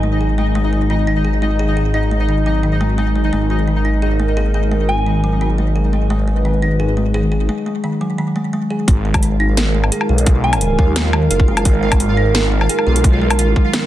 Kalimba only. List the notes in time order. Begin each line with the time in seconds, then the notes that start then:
0.03 G#3
0.21 G#4
0.38 G#3
0.55 G#3
0.73 G#3
0.90 D#3
1.07 D#4
1.25 G#4
1.42 G#3
1.59 G#4
1.77 G#4
1.94 D#4
2.11 G#3
2.29 D#3
2.46 F#3
2.63 D#3
2.81 G#3
2.98 G#3
3.15 G#3
3.33 G#3
3.50 G#3
3.68 D#3
3.85 D#4
4.02 G#4
4.20 G#3
4.37 G#4
4.54 G#4
4.71 G#3
4.89 G#3
5.06 D#3
5.24 F#3
5.41 D#3
5.58 G#3
5.76 G#4
5.93 G#3
6.10 G#3
6.28 G#3
6.45 D#3
6.62 D#4
6.80 G#4
6.97 G#3
7.14 G#4
7.32 G#4
7.49 G#3
7.66 G#3
7.84 D#3
8.01 F#3
8.18 D#3
8.36 G#3
8.53 G#3
8.70 G#4
8.88 G#3
9.05 G#3
9.23 D#3
9.40 D#4
9.57 G#4
9.74 G#3
9.92 G#4
10.09 G#4
10.27 G#3
10.44 G#3
10.61 D#3
10.79 F#3
10.96 D#3
11.13 G#3
11.31 G#4
11.48 G#3
11.65 G#3
11.83 G#3
12.00 D#3
12.17 D#4
12.35 G#4
12.52 G#3
12.69 G#4
12.87 G#4
13.04 G#3
13.22 G#3
13.39 D#3
13.56 F#3
13.73 D#3